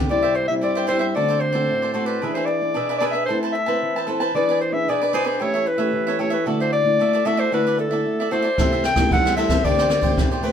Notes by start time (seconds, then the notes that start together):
0.09 C3 G3 C4 E4 G4 C5 D5 E5
0.23 G4 C5 E5
0.35 C5, muted cavaquinho stroke
0.48 G3 C4 E4 E5
0.61 G2 E4 G4 C5 D5 E5
0.75 G4 C5 E5
0.87 G3 C4 E4 G4 C5 E5
0.99 G4 C5 E5
1.15 D3 A3 C4 F#4 A4 C5 D5
1.29 A4 C5 D5
1.40 C5, muted cavaquinho stroke
1.53 A3 C4 F#4 A4 C5 D5
1.69 A2
1.82 A4 C5 D5
1.93 A3 C4 F#4 A4 C5 D5
2.06 A4 B4 C5 D5
2.22 E3 D4 G#4 B4 E5
2.34 G#4 B4 C5 E5
2.46 D5, muted cavaquinho stroke
2.61 D4 G#4 B4
2.74 B2 D4 G#4 B4 E5
2.89 G#4 B4 E5
2.98 D4 G#4 B4 D5
3.03 B4 E5
3.12 G#4 B4 E5
3.26 A3 C4 A4 C5
3.30 E4 B4 A5
3.43 B4 C5 A5
3.52 E5, muted cavaquinho stroke
3.66 C4 E4 B4 C5 A5
3.83 E3
3.96 B4 C5 A5
4.07 C4 E4 A4 B4 C5 A5
4.20 B4 C5 A5
4.34 E3 D4 E4 G#4 B4 D5
4.49 G#4 B4 D5
4.61 C5, muted cavaquinho stroke
4.72 D4 G#4 B4 E5
4.88 B2 E4 G#4 B4 D5
5.02 G#4 B4 D5
5.13 D4 E4 G#4 B4 C5 D5
5.25 G#4 B4 C5 D5
5.40 E3 A3 C#4 G4 A4 C#5 E5
5.54 A4 C#5 E5
5.66 B4, muted cavaquinho stroke
5.78 A3 C#4 G4 A4 C#5 E5
5.93 E3
6.07 A4 C#5 E5
6.19 A3 C#4 G4 A4 C#5 E5
6.30 A4 B4 C#5 E5
6.46 D3 A3 E4 F#4 A4 D5 E5
6.60 A4 C5 D5 E5
6.73 D5, muted cavaquinho stroke
6.84 A3 E4 F#4
6.99 A3 F#4 A4 D5 E5
7.13 A4 D5 E5
7.25 A3 E4 F#4 A4 D5 E5
7.37 A4 C5 D5 E5
7.52 D3 A3 E4 F#4 A4 B4 D5 E5
7.67 A4 D5 E5
7.78 A4, muted cavaquinho stroke
7.90 A3 E4 F#4 A4 D5 E5
8.06 A3
8.20 A4 D5 E5
8.31 A3 E4 F#4 A4 C5 D5 E5
8.42 A4 D5 E5
8.58 C3 A3 E4 G4 A4 C5 E5, kick, cross-stick, ride
8.72 A4 C5 E5
8.84 G5, muted cavaquinho stroke, cross-stick, ride
8.96 A3 E4 G4, kick, cross-stick, ride
9.11 G3 E4 A4 C5 E5 F#5, kick, ride
9.26 A4 C5 E5, cross-stick
9.37 A3 E4 G4 A4 C5 E5, ride
9.49 A4 C5 E5, kick, cross-stick, ride
9.64 D3 A3 C4 D4 G4 C5 D5, kick, ride
9.78 G4 C5 D5, cross-stick
9.90 muted cavaquinho stroke, cross-stick, ride
10.01 A3 C4 G4 C5 D5, kick, ride
10.18 A2, kick, cross-stick, ride
10.32 G4 C5 D5
10.43 A3 C4 D4 G4 B4 C5 D5, ride